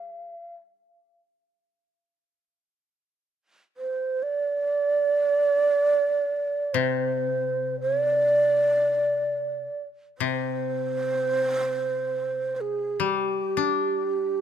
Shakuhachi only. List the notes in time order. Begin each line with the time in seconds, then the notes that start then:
Already playing: F5
3.77 C5
4.23 D5
6.74 C5
7.81 C#5
7.99 D5
10.18 C5
12.56 C5
12.61 G#4
13.00 G4